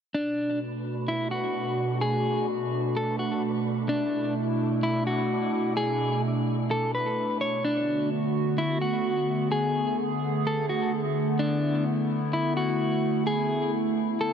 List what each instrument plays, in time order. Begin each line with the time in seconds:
0.14 analog synth pad B2 A3 D4 F#4, synth texture A3 D4 B4, clean electric guitar D4
1.08 clean electric guitar E4
1.31 clean electric guitar F#4
2.01 clean electric guitar G#4, synth texture B4
2.97 clean electric guitar A4
3.19 clean electric guitar F#4
3.89 analog synth pad B2 E4, clean electric guitar D4, synth texture E4 D5
4.83 clean electric guitar E4
5.07 clean electric guitar F#4
5.77 clean electric guitar G#4
6.71 clean electric guitar A4
6.95 clean electric guitar B4
7.41 clean electric guitar C#5
7.64 analog synth pad D3 A3 B3 F#4, clean electric guitar D4
8.58 clean electric guitar E4
8.81 clean electric guitar F#4
9.52 clean electric guitar G#4, analog synth pad G#4
10.47 clean electric guitar A4
10.69 clean electric guitar F#4
11.39 clean electric guitar D4, analog synth pad E4
12.33 clean electric guitar E4
12.57 clean electric guitar F#4
13.27 clean electric guitar G#4
14.21 clean electric guitar A4